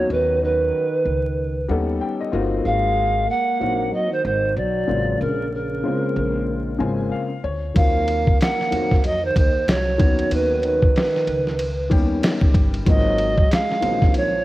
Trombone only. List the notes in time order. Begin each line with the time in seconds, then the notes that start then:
Already playing: F#3
0.11 D#3
0.43 D#3
2.66 G#3
3.29 A#3
3.92 F#3
4.12 D#3
4.25 D#3
4.57 F#3
5.20 C#3
5.53 C#3
7.76 A#3
8.41 A#3
9.05 F#3
9.24 D#3
9.37 D#3
9.69 F#3
10.33 D#3
10.64 D#3
12.87 F#3
13.51 G#3
14.14 F3